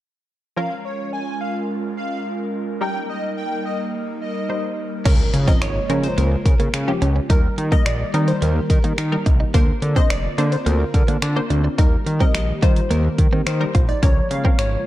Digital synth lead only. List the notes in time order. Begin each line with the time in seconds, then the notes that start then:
0.57 F5
0.85 C#5
1.13 G#5
1.41 F5
1.97 F5
2.81 G5
3.09 D#5
3.37 G5
3.65 D#5
4.21 D#5